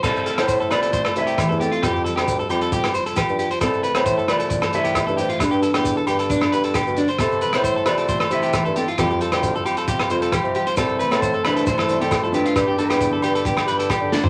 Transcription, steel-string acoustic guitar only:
\new Staff \with { instrumentName = "Steel-string acoustic guitar" } { \time 4/4 \key c \major \tempo 4 = 134 << { g8 a4 c'8 a8 e'8 c'8 a8 | r8 g4 c'8 g8 c'8 c'8 g8~ | g8 a4 c'8 a8 e'4. | r8 b4 d'8 b8 g'8 d'8 b8 |
r8 g16 a8. c'8 a8 e'8 c'8 a8 | <f g c'>8 g4 c'8 g8 c'8 c'8 g8~ | g8 a4 c'8 a8 e'8 c'8 a8 | r8 b4 d'8 b8 g'8 d'8 b8 | } \\ { r2 g,4 e4 | f,4 f4 c4 f4 | c4 e4 g,4 b,8 a,8 | g,4 d4 g,4 d4 |
c4 e4 g,4 e4 | f,4 f4 c4 f4 | c4 e4 g,2 | g,4 d4 g,4 d4 | } >> }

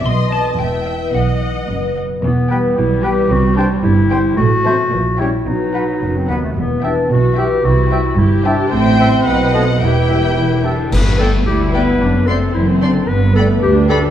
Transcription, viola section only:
\new Staff \with { instrumentName = "Viola section" } { \time 2/4 \key e \minor \tempo 4 = 111 dis''4 e''4 | dis''4. r8 | e8 g4.~ | g2 |
a8 fis8 e8 g8 | fis4. r8 | r4 fis'4 | e'4 g'4 |
c''4 b'8 a'8 | g'4. r8 | \key g \major b4 e'4 | d'8 c'4. |
b4 d'4 | }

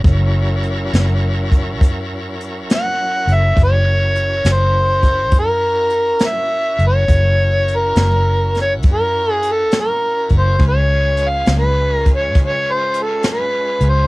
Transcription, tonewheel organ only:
\new Staff \with { instrumentName = "Tonewheel organ" } { \time 12/8 \key fis \mixolydian \tempo 4. = 68 <fis cis' e' ais'>1. | <d' eis' g' b'>8 <cis' e' fis' ais'>1~ <cis' e' fis' ais'>4. | <cis' e' fis' ais'>1. | <gis cis' eis' b'>1. | }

